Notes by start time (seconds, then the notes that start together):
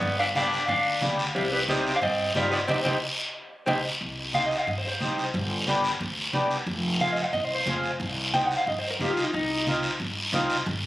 Already playing: B3 B4 D5
0.01 G1, high conga, low conga, long guiro
0.19 D4 D5 F5
0.35 B3 D4 G4 D5 F5, high conga, short guiro
0.53 short guiro
0.68 D2 D4 D5 F5, high conga, low conga, long guiro
1.01 D2 B3 D4 G4, high conga, short guiro
1.19 short guiro
1.35 C2 G3 G4 C5, high conga, long guiro
1.52 G3 G4 B4
1.68 G3 C4 D#4 G4 C5, high conga, short guiro
1.87 short guiro
1.94 D4 F5
2.01 G2 C4 C5 D#5, high conga, low conga, long guiro
2.34 G2 G3 C4 D#4 F4 G4 D5, high conga, short guiro
2.51 B3 B4 D5, short guiro
2.67 C2 C4 D#4 G4 C5 D#5, high conga, long guiro
2.84 C2 C4 D#4 G4 C5 D#5, high conga, long guiro
3.66 C2 C4 D#4 G4 C5 D#5, high conga, long guiro
4.01 C2, high conga, long guiro
4.34 C4 D#4 G4 F5, high conga, short guiro
4.46 D#5
4.51 short guiro
4.57 F5
4.67 G2 D#5, high conga, low conga, long guiro
4.78 C5
4.88 C5
5.00 C2 C4 D#4 G4, high conga, short guiro
5.18 short guiro
5.34 G1, high conga, low conga, long guiro
5.67 B3 D4 G4, high conga, short guiro
5.84 short guiro
6.00 D2, high conga, low conga, long guiro
6.33 C2 B3 D4 G4, high conga, short guiro
6.51 short guiro
6.66 F1, high conga, long guiro
7.00 C4 F4 G#4 F5, high conga, short guiro
7.12 D#5
7.16 short guiro
7.22 F5
7.33 C2 D#5, high conga, low conga, long guiro
7.45 C5
7.55 C5
7.66 F1 C4 F4 G#4, high conga, short guiro
7.84 short guiro
8.00 C2, high conga, low conga, long guiro
8.34 C4 D#4 G4 G5, high conga, short guiro
8.45 F#5
8.51 short guiro
8.57 F5
8.66 G2 D#5, high conga, low conga, long guiro
8.79 C5
8.90 A#4
8.99 C2 C4 D#4 F4 G4, high conga, low conga, short guiro
9.13 F4, short guiro
9.24 D#4
9.33 C2 D#4, high conga, long guiro
9.67 C4 D#4 F4, high conga, short guiro
9.83 short guiro
10.00 G2, high conga, low conga, long guiro
10.32 C2 C4 D#4 F4, high conga, short guiro
10.50 short guiro
10.66 G1, high conga, low conga, long guiro